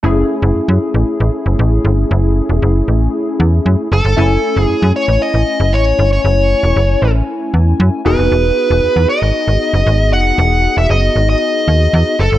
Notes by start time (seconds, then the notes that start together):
0.03 F#1 A3 C#4 E4 G#4
0.42 F#1
0.56 F#2
0.68 F#2
0.94 A1
1.20 A1
1.46 F#1
1.59 A1
1.85 G1
2.11 F#1
2.49 E1
2.62 F#1
2.88 A1
3.40 E2
3.66 F#2
3.92 F#1 A4
4.05 G1
4.16 F#1 A3 C#4 E4 G#5
4.56 F#1 G#4
4.69 F#2
4.82 F#2
4.96 C#5
5.08 A1
5.22 D#5
5.34 A1
5.60 F#1
5.73 A1 C#5
5.99 G1
6.13 C#5
6.25 F#1
6.63 E1
6.76 F#1
7.02 A1
7.54 E2
7.80 F#2
8.05 E1 B3 D#4 F#4 G#4 B4
8.19 F1
8.32 E1
8.70 E1
8.83 E2
8.96 E2
9.09 D#5
9.22 G#1
9.48 G#1
9.73 F#1
9.86 G#1
10.12 F1 F#5
10.38 E1
10.77 E1 E5
10.90 F#1 D#5
11.16 G#1
11.30 D#5
11.68 D#2
11.93 E2
12.19 F#1 A4
12.32 G1